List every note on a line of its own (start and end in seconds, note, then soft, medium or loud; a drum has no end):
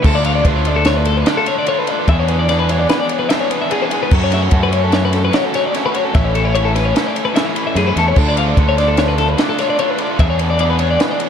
0.00 0.43 D3 medium
0.00 2.08 A3 medium
0.04 0.43 D2 loud
0.04 0.26 A3 loud
0.04 0.26 D4 medium
0.04 0.23 F4 loud
0.04 0.15 A4 medium
0.04 kick loud
0.04 crash loud
0.15 0.25 D5 medium
0.24 0.44 A3 medium
0.24 0.46 D4 medium
0.24 0.46 F4 medium
0.24 0.35 F5 medium
0.24 ride medium
0.35 0.46 D5 medium
0.44 1.23 D2 medium
0.44 0.85 D3 medium
0.44 0.67 A3 medium
0.44 0.66 D4 medium
0.44 0.63 F4 medium
0.44 0.56 B4 medium
0.44 kick loud
0.44 ride loud
0.56 0.67 C#5 medium
0.65 1.25 A3 medium
0.65 1.27 D4 medium
0.65 1.27 F4 medium
0.65 0.76 D5 medium
0.65 ride medium
0.76 0.86 A4 medium
0.85 0.97 C#5 medium
0.85 snare loud
0.85 ride loud
0.97 1.06 B4 medium
1.05 1.17 A4 medium
1.05 ride medium
1.17 1.27 B4 medium
1.25 1.65 D3 loud
1.25 1.47 A3 loud
1.25 1.46 D4 loud
1.25 1.44 F4 loud
1.25 1.37 D5 medium
1.25 snare loud
1.25 ride loud
1.37 1.47 A4 medium
1.46 1.66 A3 medium
1.46 1.67 D4 medium
1.46 1.68 F4 medium
1.46 1.58 C#5 medium
1.46 ride medium
1.59 1.68 D5 medium
1.66 2.06 D3 medium
1.66 1.90 A3 loud
1.66 1.89 D4 loud
1.66 1.87 F4 loud
1.66 1.79 C#5 medium
1.66 ride loud
1.79 1.89 B4 medium
1.87 2.08 D4 medium
1.87 2.07 F4 medium
1.87 1.99 D5 medium
1.87 ride medium
1.91 2.09 A3 medium
1.99 2.09 B4 medium
2.08 2.86 E2 loud
2.08 2.49 E3 loud
2.08 2.30 B3 loud
2.08 2.29 D4 medium
2.08 2.27 G#4 loud
2.08 2.19 E5 medium
2.08 kick loud
2.08 ride loud
2.19 2.29 C#5 medium
2.28 2.49 B3 medium
2.28 2.50 D4 medium
2.28 2.51 G#4 medium
2.28 2.39 B4 medium
2.28 ride medium
2.39 2.48 D5 medium
2.49 3.29 E3 medium
2.49 2.72 B3 medium
2.49 2.70 D4 medium
2.49 2.69 G#4 medium
2.49 2.59 D5 medium
2.49 snare soft
2.49 ride loud
2.59 2.69 B4 medium
2.69 3.31 D4 medium
2.69 3.32 G#4 medium
2.69 2.79 C#5 medium
2.69 ride medium
2.73 3.30 B3 medium
2.79 2.89 D5 medium
2.89 2.99 B4 medium
2.89 snare loud
2.89 ride medium
2.99 3.09 D5 medium
3.09 3.19 C#5 medium
3.09 ride medium
3.19 3.29 B4 medium
3.29 3.70 E3 loud
3.29 3.53 B3 medium
3.29 3.51 D4 loud
3.29 3.40 E5 medium
3.29 snare loud
3.29 ride loud
3.33 3.49 G#4 loud
3.40 3.51 C#5 medium
3.50 3.70 B3 medium
3.50 3.70 D4 medium
3.50 3.72 G#4 medium
3.50 3.61 B4 medium
3.50 ride medium
3.62 3.71 E5 medium
3.70 4.11 E3 loud
3.70 3.92 B3 loud
3.70 3.92 D4 loud
3.70 3.82 G#4 loud
3.70 3.90 G#4 loud
3.70 ride loud
3.82 3.92 B4 medium
3.91 4.11 B3 medium
3.91 4.11 D4 medium
3.91 4.10 G#4 medium
3.91 4.02 G#4 medium
3.91 ride medium
4.03 4.13 B4 medium
4.11 4.50 F#2 loud
4.11 4.50 F#3 medium
4.11 4.34 A3 loud
4.11 4.33 C#4 loud
4.11 4.30 F#4 loud
4.11 4.22 A4 medium
4.11 kick loud
4.11 crash loud
4.24 4.33 C#5 medium
4.31 4.52 A3 medium
4.31 4.53 C#4 medium
4.31 4.53 F#4 medium
4.31 4.42 E5 medium
4.31 snare soft
4.31 ride medium
4.42 4.53 C#5 medium
4.51 5.29 F#2 loud
4.51 4.92 F#3 medium
4.51 4.74 A3 medium
4.51 4.73 C#4 medium
4.51 4.70 F#4 medium
4.51 4.63 A4 medium
4.51 kick loud
4.51 ride loud
4.63 4.73 B4 medium
4.72 5.33 A3 medium
4.72 5.32 C#4 medium
4.72 5.34 F#4 medium
4.72 4.84 C#5 medium
4.72 ride medium
4.84 4.93 A4 medium
4.92 5.03 C#5 medium
4.92 snare loud
4.92 ride medium
5.05 5.15 B4 medium
5.13 5.24 A4 medium
5.13 snare soft
5.13 ride medium
5.25 5.34 B4 medium
5.31 5.72 F#3 loud
5.31 5.56 A3 loud
5.31 5.54 C#4 loud
5.31 5.52 F#4 loud
5.31 5.45 C#5 loud
5.31 snare loud
5.31 ride loud
5.45 5.54 A4 medium
5.53 5.74 A3 medium
5.53 5.75 C#4 medium
5.53 5.76 F#4 medium
5.53 5.65 C#5 medium
5.53 snare soft
5.53 ride medium
5.65 5.75 D5 medium
5.73 6.13 F#3 medium
5.73 5.96 A3 loud
5.73 5.94 C#4 loud
5.73 5.84 C#5 medium
5.73 snare soft
5.73 ride loud
5.77 5.92 F#4 loud
5.86 5.95 B4 medium
5.93 6.15 A3 medium
5.93 6.14 C#4 medium
5.93 6.13 F#4 medium
5.93 6.05 C#5 medium
5.93 ride medium
6.05 6.14 A4 medium
6.14 6.92 A1 loud
6.14 6.55 A2 loud
6.14 6.52 E3 loud
6.14 6.36 A3 loud
6.14 6.34 C#4 loud
6.14 6.32 E4 loud
6.14 6.25 E5 loud
6.14 kick loud
6.14 ride loud
6.25 6.35 C#5 medium
6.33 6.54 A3 medium
6.33 6.54 C#4 medium
6.33 6.55 E4 medium
6.33 6.45 A4 medium
6.33 ride medium
6.45 6.54 C#5 medium
6.54 6.95 E3 medium
6.54 6.77 A3 medium
6.54 6.74 C#4 medium
6.54 6.73 E4 medium
6.54 6.65 C#5 medium
6.54 ride loud
6.65 6.75 A4 medium
6.74 7.34 A3 medium
6.74 7.34 C#4 medium
6.74 7.35 E4 medium
6.74 6.85 B4 medium
6.74 snare soft
6.74 ride medium
6.85 6.95 C#5 medium
6.95 7.06 B4 medium
6.95 snare loud
6.95 ride loud
7.06 7.16 D5 medium
7.16 7.25 C#5 medium
7.16 ride medium
7.25 7.35 B4 medium
7.33 7.73 A2 medium
7.33 7.75 E3 loud
7.33 7.56 A3 loud
7.33 7.55 C#4 loud
7.33 7.54 E4 loud
7.33 7.46 E5 medium
7.33 snare loud
7.33 ride loud
7.46 7.55 C#5 medium
7.55 7.75 A3 medium
7.55 7.76 C#4 medium
7.55 7.76 E4 medium
7.55 7.66 B4 medium
7.55 ride medium
7.67 7.77 E5 medium
7.75 7.94 F#2 medium
7.75 8.15 A2 loud
7.75 8.15 E3 loud
7.75 7.98 A3 medium
7.75 7.96 C#4 loud
7.75 7.94 E4 loud
7.75 7.87 G#4 medium
7.75 snare soft
7.75 ride loud
7.87 7.97 B4 medium
7.96 8.15 E2 medium
7.96 8.16 A3 medium
7.96 8.16 C#4 medium
7.96 8.15 E4 medium
7.96 8.08 A4 medium
7.96 snare soft
7.96 ride medium
8.08 8.18 C#5 medium
8.16 8.55 D2 loud
8.16 8.55 D3 loud
8.16 8.38 A3 loud
8.16 8.37 D4 loud
8.16 8.34 F4 loud
8.16 8.28 A4 loud
8.16 kick loud
8.16 crash loud
8.29 8.38 D5 medium
8.35 8.59 D4 medium
8.35 8.59 F4 medium
8.35 8.48 F5 medium
8.35 ride medium
8.39 8.57 A3 medium
8.48 8.58 D5 medium
8.57 9.34 D2 loud
8.57 8.98 D3 medium
8.57 8.78 A3 medium
8.57 8.78 D4 medium
8.57 8.75 F4 medium
8.57 8.68 B4 medium
8.57 kick loud
8.57 ride loud
8.69 8.78 C#5 medium
8.76 9.37 A3 medium
8.76 9.39 D4 medium
8.76 9.39 F4 medium
8.76 8.88 D5 medium
8.76 snare soft
8.76 ride medium
8.88 8.98 A4 medium
8.97 9.08 C#5 medium
8.97 snare loud
8.97 ride loud
9.08 9.18 B4 medium
9.18 9.28 A4 medium
9.18 snare soft
9.18 ride medium
9.28 9.39 B4 medium
9.37 9.77 D3 loud
9.37 9.60 A3 loud
9.37 9.59 D4 loud
9.37 9.57 F4 medium
9.37 9.49 D5 medium
9.37 snare loud
9.37 ride loud
9.49 9.59 A4 medium
9.58 9.78 A3 medium
9.58 9.79 D4 medium
9.58 9.80 F4 medium
9.58 9.69 C#5 medium
9.58 snare soft
9.58 ride medium
9.70 9.79 D5 medium
9.78 10.18 D3 medium
9.78 10.01 A3 loud
9.78 9.99 D4 loud
9.78 9.98 F4 loud
9.78 9.90 C#5 medium
9.78 ride loud
9.90 10.01 B4 medium
9.98 10.19 A3 medium
9.98 10.19 D4 medium
9.98 10.18 F4 medium
9.98 10.10 D5 medium
9.98 ride medium
10.10 10.20 B4 medium
10.18 10.96 E2 loud
10.18 10.59 E3 loud
10.18 10.41 B3 medium
10.18 10.40 D4 loud
10.18 10.38 G#4 loud
10.18 10.29 E5 loud
10.18 kick loud
10.18 ride loud
10.30 10.41 C#5 medium
10.39 10.60 B3 medium
10.39 10.61 D4 medium
10.39 10.62 G#4 medium
10.39 10.50 B4 medium
10.39 ride medium
10.50 10.59 D5 medium
10.59 11.29 E3 medium
10.59 10.82 B3 medium
10.59 10.80 D4 medium
10.59 10.69 D5 medium
10.59 ride loud
10.63 10.79 G#4 medium
10.70 10.79 B4 medium
10.79 11.29 D4 medium
10.79 11.29 G#4 medium
10.79 10.90 C#5 medium
10.79 ride medium
10.83 11.29 B3 medium
10.91 11.00 D5 medium
11.00 11.11 B4 medium
11.00 snare loud
11.00 ride medium
11.11 11.20 D5 medium
11.20 11.29 C#5 medium
11.20 ride medium